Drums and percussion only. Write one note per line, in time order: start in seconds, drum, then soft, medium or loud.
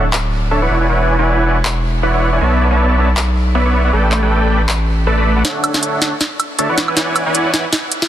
0.13 clap loud
1.65 clap loud
3.17 clap loud
4.12 clap medium
4.69 clap loud
5.45 snare soft
5.45 closed hi-hat medium
5.64 closed hi-hat medium
5.64 high woodblock medium
5.74 snare soft
5.83 closed hi-hat medium
6.02 snare medium
6.02 closed hi-hat medium
6.21 snare medium
6.21 closed hi-hat medium
6.40 closed hi-hat medium
6.40 high woodblock medium
6.59 closed hi-hat medium
6.78 snare medium
6.78 closed hi-hat medium
6.88 high woodblock medium
6.97 snare medium
6.97 closed hi-hat medium
7.16 closed hi-hat medium
7.16 high woodblock medium
7.35 closed hi-hat medium
7.54 snare medium
7.54 closed hi-hat medium
7.73 snare medium
7.73 closed hi-hat medium
7.92 closed hi-hat medium
8.02 snare medium